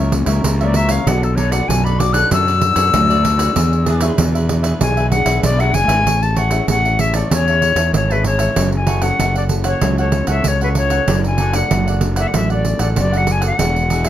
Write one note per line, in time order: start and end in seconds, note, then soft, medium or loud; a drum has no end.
0.00 0.22 C#2 loud
0.00 0.42 F#2 medium
0.00 0.12 A#4 soft
0.00 0.12 C#5 medium
0.00 0.12 E5 medium
0.12 0.55 E3 medium
0.12 0.55 A#3 medium
0.12 0.55 C#4 medium
0.12 muted cavaquinho stroke soft
0.12 pandeiro medium
0.26 0.41 C#2 medium
0.26 0.59 A#4 medium
0.26 0.59 C#5 medium
0.26 0.58 E5 medium
0.26 pandeiro medium
0.44 0.97 C#2 loud
0.44 1.04 C#3 medium
0.44 pandeiro medium
0.61 1.03 E3 medium
0.61 1.03 A#3 medium
0.61 1.03 C#4 medium
0.61 0.75 A#4 medium
0.61 0.75 C#5 medium
0.61 0.77 D5 medium
0.61 0.75 E5 medium
0.61 pandeiro soft
0.74 0.90 F#4 medium
0.74 0.90 A#4 medium
0.74 0.89 C#5 medium
0.74 0.93 E5 medium
0.74 0.88 E5 medium
0.74 pandeiro medium
0.89 1.06 A#4 medium
0.89 1.05 C#5 medium
0.89 1.05 E5 medium
0.89 1.09 F5 medium
0.89 pandeiro medium
1.06 1.60 B1 loud
1.06 1.66 B2 medium
1.06 1.37 A3 medium
1.06 1.21 D4 medium
1.06 1.37 D4 medium
1.06 1.37 F#4 medium
1.06 1.21 A4 medium
1.06 1.22 B4 medium
1.06 1.22 D5 medium
1.06 1.25 F#5 medium
1.06 pandeiro medium
1.23 1.37 A4 medium
1.23 muted cavaquinho stroke soft
1.23 pandeiro soft
1.36 1.52 D4 medium
1.36 1.52 A4 medium
1.36 1.52 B4 medium
1.36 1.53 C#5 medium
1.36 1.51 D5 medium
1.36 pandeiro medium
1.52 1.95 A3 medium
1.52 1.95 D4 medium
1.52 1.95 F#4 medium
1.52 1.68 A4 medium
1.52 1.68 B4 medium
1.52 1.67 D5 medium
1.52 1.70 F#5 medium
1.52 pandeiro medium
1.68 2.22 B1 loud
1.68 2.29 F#2 medium
1.68 1.83 D4 medium
1.68 1.84 A4 medium
1.68 1.84 B4 medium
1.68 1.84 D5 medium
1.68 1.86 G#5 medium
1.68 pandeiro medium
1.84 2.14 A4 medium
1.84 2.14 B4 medium
1.84 2.12 D5 medium
1.84 2.01 B5 medium
1.84 pandeiro soft
1.99 2.26 A3 medium
1.99 2.27 D4 medium
1.99 2.27 F#4 medium
1.99 2.15 D6 medium
1.99 pandeiro medium
2.13 2.30 A4 medium
2.13 2.30 B4 medium
2.13 2.29 D5 medium
2.13 2.30 F#6 loud
2.13 pandeiro medium
2.31 2.71 F#2 loud
2.31 2.91 B2 medium
2.31 2.50 A3 medium
2.31 2.46 D4 soft
2.31 2.50 D4 medium
2.31 2.51 F#4 medium
2.31 2.46 A4 medium
2.31 2.47 B4 medium
2.31 2.46 D5 medium
2.31 4.16 E6 loud
2.31 pandeiro medium
2.47 2.61 A4 soft
2.47 2.62 B4 medium
2.47 2.62 D5 medium
2.47 pandeiro soft
2.61 3.04 A3 medium
2.61 3.05 D4 medium
2.61 3.05 F#4 medium
2.61 muted cavaquinho stroke soft
2.61 pandeiro medium
2.76 2.90 F#2 medium
2.76 3.08 A4 medium
2.76 3.08 B4 medium
2.76 3.07 D5 medium
2.76 pandeiro medium
2.94 3.47 D2 loud
2.94 3.53 F#2 medium
2.94 pandeiro medium
3.09 3.51 A3 medium
3.09 3.52 D4 medium
3.09 3.52 F#4 medium
3.09 3.23 A4 medium
3.09 3.24 B4 medium
3.09 3.24 D5 medium
3.09 pandeiro soft
3.23 3.38 D4 soft
3.23 3.38 A4 medium
3.23 3.38 B4 medium
3.23 3.37 D5 medium
3.23 pandeiro medium
3.38 3.55 A4 medium
3.38 3.54 B4 medium
3.38 3.54 D5 medium
3.38 pandeiro medium
3.56 4.09 E2 loud
3.56 4.15 E3 medium
3.56 3.85 B3 medium
3.56 3.86 D4 medium
3.56 3.71 D4 medium
3.56 3.86 G#4 medium
3.56 3.71 G#4 medium
3.56 3.72 B4 medium
3.56 3.72 E5 medium
3.56 pandeiro medium
3.73 muted cavaquinho stroke soft
3.73 pandeiro soft
3.86 4.02 D4 medium
3.86 4.02 G#4 medium
3.86 4.02 B4 medium
3.86 4.01 E5 medium
3.86 pandeiro medium
4.01 4.44 B3 medium
4.01 4.44 D4 medium
4.01 4.44 G#4 medium
4.01 4.18 G#4 medium
4.01 4.18 B4 medium
4.01 4.17 E5 medium
4.01 pandeiro medium
4.18 4.72 E2 loud
4.18 4.78 B2 medium
4.18 4.33 D4 medium
4.18 4.34 G#4 soft
4.18 4.34 B4 medium
4.18 4.34 E5 medium
4.18 pandeiro medium
4.35 4.64 G#4 medium
4.35 4.62 B4 medium
4.35 4.61 E5 medium
4.35 pandeiro soft
4.48 4.76 B3 medium
4.48 4.76 D4 medium
4.48 4.76 G#4 medium
4.48 pandeiro medium
4.63 4.80 G#4 medium
4.63 4.79 B4 medium
4.63 4.79 E5 medium
4.63 pandeiro medium
4.80 5.21 B1 medium
4.80 5.41 E3 medium
4.80 5.00 B3 medium
4.80 4.95 D4 soft
4.80 5.00 D4 medium
4.80 4.96 G#4 soft
4.80 5.01 G#4 medium
4.80 4.96 B4 medium
4.80 4.96 E5 medium
4.80 5.10 G#5 medium
4.80 pandeiro medium
4.97 5.10 G#4 medium
4.97 5.11 B4 medium
4.97 5.11 E5 medium
4.97 pandeiro soft
5.10 5.54 B3 medium
5.10 5.54 D4 medium
5.10 5.55 G#4 medium
5.10 5.41 F#5 loud
5.10 muted cavaquinho stroke soft
5.10 pandeiro medium
5.25 5.40 B1 medium
5.25 5.58 G#4 medium
5.25 5.58 B4 medium
5.25 5.57 E5 medium
5.25 pandeiro medium
5.43 5.70 B1 loud
5.43 6.03 B2 medium
5.43 5.62 D5 loud
5.43 pandeiro medium
5.59 6.02 B3 medium
5.59 6.02 D4 medium
5.59 6.02 G#4 medium
5.59 5.72 G#4 medium
5.59 5.73 B4 medium
5.59 5.74 E5 medium
5.59 5.76 F#5 loud
5.59 pandeiro soft
5.72 5.87 F#1 medium
5.72 5.88 D4 soft
5.72 5.89 G#4 medium
5.72 5.87 B4 medium
5.72 5.86 E5 medium
5.72 6.24 G#5 loud
5.72 pandeiro medium
5.88 6.03 G#1 medium
5.88 6.04 G#4 medium
5.88 6.04 B4 medium
5.88 6.04 E5 medium
5.88 pandeiro medium
6.05 6.59 A1 medium
6.05 6.66 A3 medium
6.05 6.36 C#4 soft
6.05 6.36 E4 medium
6.05 6.20 G#4 soft
6.05 6.36 G#4 medium
6.05 6.20 C#5 medium
6.05 6.21 E5 medium
6.05 6.21 A5 medium
6.05 pandeiro medium
6.21 6.40 A5 loud
6.21 muted cavaquinho stroke soft
6.21 pandeiro soft
6.35 6.51 G#4 medium
6.35 6.51 C#5 medium
6.35 6.51 E5 medium
6.35 6.69 F#5 loud
6.35 6.49 A5 medium
6.35 pandeiro medium
6.50 6.94 C#4 medium
6.50 6.95 E4 medium
6.50 6.95 G#4 medium
6.50 6.67 C#5 medium
6.50 6.67 E5 medium
6.50 6.66 A5 medium
6.50 pandeiro medium
6.67 7.22 A1 medium
6.67 7.28 E3 medium
6.67 6.83 G#4 soft
6.67 6.83 C#5 medium
6.67 6.84 E5 medium
6.67 7.02 F#5 loud
6.67 6.83 A5 soft
6.67 pandeiro medium
6.84 7.15 C#5 soft
6.84 7.13 E5 soft
6.84 7.12 A5 medium
6.84 pandeiro soft
6.98 7.18 C#4 medium
6.98 7.18 E4 medium
6.98 7.18 G#4 medium
6.98 7.17 E5 medium
6.98 pandeiro medium
7.14 7.30 C#5 medium
7.14 7.31 D5 medium
7.14 7.30 E5 medium
7.14 7.29 A5 medium
7.14 pandeiro medium
7.31 7.71 E2 medium
7.31 7.91 A3 medium
7.31 7.58 C#4 medium
7.31 7.58 E4 medium
7.31 7.46 G#4 soft
7.31 7.58 G#4 medium
7.31 7.46 C#5 medium
7.31 7.92 C#5 loud
7.31 7.47 E5 soft
7.31 7.46 A5 soft
7.31 pandeiro medium
7.47 7.61 C#5 medium
7.47 7.61 E5 medium
7.47 7.62 A5 medium
7.47 pandeiro soft
7.62 7.92 C#4 medium
7.62 7.92 E4 medium
7.62 7.92 G#4 medium
7.62 muted cavaquinho stroke soft
7.62 pandeiro medium
7.76 7.90 E2 medium
7.76 8.09 C#5 medium
7.76 8.08 E5 medium
7.76 8.08 A5 medium
7.76 pandeiro medium
7.93 8.47 G#1 loud
7.93 8.54 E3 medium
7.93 8.13 C#5 medium
7.93 pandeiro medium
8.10 8.53 C#4 medium
8.10 8.53 E4 medium
8.10 8.53 G#4 medium
8.10 8.26 B4 medium
8.10 8.24 C#5 soft
8.10 8.24 E5 medium
8.10 8.25 A5 medium
8.10 pandeiro soft
8.24 8.39 G#4 soft
8.24 8.39 C#5 soft
8.24 8.70 C#5 medium
8.24 8.38 E5 soft
8.24 8.37 A5 soft
8.24 pandeiro medium
8.38 8.56 C#5 medium
8.38 8.55 E5 medium
8.38 8.54 A5 medium
8.38 pandeiro medium
8.56 9.10 F#1 medium
8.56 9.17 F#3 medium
8.56 8.99 C#4 soft
8.56 8.71 E4 soft
8.56 8.99 E4 soft
8.56 8.72 A4 soft
8.56 8.99 A4 medium
8.56 8.72 C#5 medium
8.56 8.72 F#5 soft
8.56 pandeiro medium
8.72 9.04 G#5 medium
8.72 muted cavaquinho stroke soft
8.72 pandeiro soft
8.86 9.02 E4 medium
8.86 9.02 A4 medium
8.86 9.02 C#5 medium
8.86 9.00 F#5 medium
8.86 pandeiro medium
9.01 9.45 C#4 medium
9.01 9.45 E4 medium
9.01 9.46 A4 medium
9.01 9.19 A4 soft
9.01 9.18 C#5 medium
9.01 9.17 F#5 medium
9.01 9.35 F#5 medium
9.01 pandeiro medium
9.19 9.73 F#1 medium
9.19 9.79 C#3 medium
9.19 9.34 E4 soft
9.19 9.34 A4 medium
9.19 9.35 C#5 soft
9.19 9.34 F#5 medium
9.19 pandeiro medium
9.35 9.65 A4 soft
9.35 9.44 D5 medium
9.35 9.63 F#5 medium
9.35 pandeiro soft
9.49 9.69 C#4 medium
9.49 9.69 E4 medium
9.49 9.69 A4 medium
9.49 pandeiro medium
9.64 9.81 A4 medium
9.64 9.81 C#5 medium
9.64 9.96 C#5 medium
9.64 9.80 F#5 medium
9.64 pandeiro medium
9.81 10.22 C#2 loud
9.81 10.42 F#3 medium
9.81 10.00 C#4 medium
9.81 10.00 E4 medium
9.81 9.97 E4 soft
9.81 10.01 A4 medium
9.81 9.97 A4 soft
9.81 9.98 C#5 soft
9.81 9.97 F#5 medium
9.81 pandeiro medium
9.98 10.12 A4 medium
9.98 10.28 C#5 medium
9.98 10.13 C#5 medium
9.98 10.13 F#5 medium
9.98 pandeiro soft
10.12 10.55 C#4 medium
10.12 10.55 E4 medium
10.12 10.56 A4 medium
10.12 muted cavaquinho stroke soft
10.12 pandeiro medium
10.27 10.42 C#2 medium
10.27 10.60 A4 medium
10.27 10.60 C#5 medium
10.27 10.49 E5 medium
10.27 10.59 F#5 medium
10.27 pandeiro medium
10.44 10.99 C#2 medium
10.44 11.05 C#3 medium
10.44 10.63 C#5 medium
10.44 pandeiro medium
10.61 11.04 C#4 medium
10.61 11.04 E4 medium
10.61 11.04 A4 medium
10.61 10.76 A4 medium
10.61 10.69 B4 medium
10.61 10.76 C#5 medium
10.61 10.76 F#5 medium
10.61 pandeiro soft
10.75 10.91 E4 soft
10.75 10.92 A4 soft
10.75 10.91 C#5 medium
10.75 11.22 C#5 medium
10.75 10.90 F#5 soft
10.75 pandeiro medium
10.90 11.08 A4 medium
10.90 11.07 C#5 medium
10.90 11.06 F#5 medium
10.90 pandeiro medium
11.08 11.62 F#1 loud
11.08 11.68 F#3 medium
11.08 11.38 A3 medium
11.08 11.23 D4 medium
11.08 11.38 D4 medium
11.08 11.38 A4 medium
11.08 11.23 A4 soft
11.08 11.24 D5 medium
11.08 11.24 F#5 medium
11.08 pandeiro medium
11.24 11.57 G#5 medium
11.24 muted cavaquinho stroke soft
11.24 pandeiro soft
11.38 11.54 D4 medium
11.38 11.54 A4 medium
11.38 11.53 D5 medium
11.38 11.52 F#5 medium
11.38 pandeiro medium
11.53 11.97 A3 medium
11.53 11.97 D4 medium
11.53 11.97 A4 medium
11.53 11.70 A4 medium
11.53 11.70 D5 medium
11.53 11.69 F#5 medium
11.53 11.87 F#5 medium
11.53 pandeiro medium
11.70 12.25 F#1 medium
11.70 12.31 F#3 medium
11.70 11.86 D4 soft
11.70 11.86 A4 medium
11.70 11.87 D5 soft
11.70 11.86 F#5 medium
11.70 pandeiro medium
11.87 12.18 A4 medium
11.87 12.17 D5 medium
11.87 12.16 F#5 medium
11.87 pandeiro soft
12.01 12.21 A3 medium
12.01 12.21 D4 medium
12.01 12.21 A4 medium
12.01 pandeiro medium
12.16 12.34 A4 medium
12.16 12.33 D5 medium
12.16 12.29 E5 medium
12.16 12.32 F#5 medium
12.16 pandeiro medium
12.28 12.37 F#5 medium
12.34 12.74 A1 loud
12.34 12.94 F#3 medium
12.34 12.53 A3 medium
12.34 12.49 D4 soft
12.34 12.53 D4 soft
12.34 12.53 A4 medium
12.34 12.49 A4 soft
12.34 12.50 D5 medium
12.34 12.52 E5 medium
12.34 12.49 F#5 soft
12.34 pandeiro medium
12.50 12.64 A4 medium
12.50 12.64 D5 medium
12.50 12.81 D5 medium
12.50 12.65 F#5 medium
12.50 pandeiro soft
12.65 12.95 A3 medium
12.65 12.95 D4 medium
12.65 12.95 A4 medium
12.65 muted cavaquinho stroke soft
12.65 pandeiro medium
12.79 12.94 A1 medium
12.79 13.12 A4 medium
12.79 13.11 D5 medium
12.79 12.88 D5 medium
12.79 13.11 F#5 medium
12.79 pandeiro medium
12.96 13.51 F#1 loud
12.96 13.57 F#3 medium
12.96 13.19 D5 medium
12.96 pandeiro medium
13.12 13.55 A3 medium
13.12 13.55 D4 medium
13.12 13.56 A4 medium
13.12 13.25 A4 medium
13.12 13.26 D5 medium
13.12 13.27 F#5 medium
13.12 pandeiro soft
13.17 13.33 F#5 medium
13.26 13.42 D4 soft
13.26 13.42 A4 soft
13.26 13.41 D5 medium
13.26 13.40 F#5 medium
13.26 pandeiro medium
13.32 13.46 G#5 medium
13.41 13.58 A4 medium
13.41 13.58 D5 medium
13.41 13.57 F#5 medium
13.41 pandeiro medium
13.46 14.09 F#5 medium
13.59 14.09 E1 medium
13.59 14.09 E3 soft
13.59 14.02 B3 medium
13.59 13.74 D4 soft
13.59 14.02 D4 medium
13.59 13.74 G#4 medium
13.59 14.02 G#4 medium
13.59 13.75 B4 medium
13.59 13.75 E5 medium
13.59 pandeiro medium
13.75 muted cavaquinho stroke soft
13.75 pandeiro soft
13.90 14.05 D4 medium
13.90 14.05 G#4 medium
13.90 14.04 B4 medium
13.90 14.03 E5 medium
13.90 pandeiro medium
14.04 14.09 B3 medium
14.04 14.09 D4 medium
14.04 14.09 G#4 medium
14.04 14.09 B4 medium
14.04 14.09 E5 medium
14.04 pandeiro medium